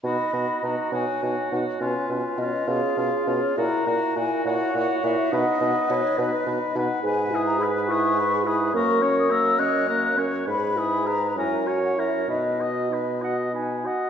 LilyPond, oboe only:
\new Staff \with { instrumentName = "Oboe" } { \time 6/8 \key b \major \tempo 4. = 68 fis'8 fis'8 fis'8 fis'8 fis'8 fis'8 | eis'8 eis'8 eis'8 eis'8 eis'8 eis'8 | fis'8 fis'8 fis'8 fis'8 fis'8 fis'8 | b'8 b'8 b'8 b'8 b'8 b'8 |
b'8 gis'8 b'8 gis'8 b'8 gis'8 | ais'8 cis''8 ais'8 cis''8 ais'8 cis''8 | b'8 gis'8 b'8 ais'8 cis''8 ais'8 | b'8 dis''8 b'8 dis''8 b'8 dis''8 | }